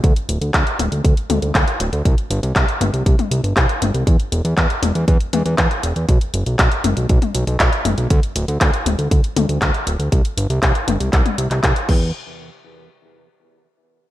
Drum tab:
CC |----------------|----------------|----------------|----------------|
HH |xxxxxxxxxxxxxxxx|xxxxxxxxxxxxxxxx|xxxxxxxxxxxxxxxx|xxxxxxxxxxxxxxxx|
CP |----x-------x---|----x-------x---|----x-------x---|----x-------x---|
T1 |------o---o-----|------o--o----o-|------o---o-----|------o--o----o-|
BD |o---o---o---o---|o---o---o---o---|o---o---o---o---|o---o---o---o---|

CC |----------------|--------------x-|----------------|
HH |xxxxxxxxxxxxxxxx|xxxxxxxxxxxxxx--|----------------|
CP |----x-------x---|----x---x--xx---|----------------|
T1 |------o---o-----|------o--o------|----------------|
BD |o---o---o---o---|o---o---o---o-o-|----------------|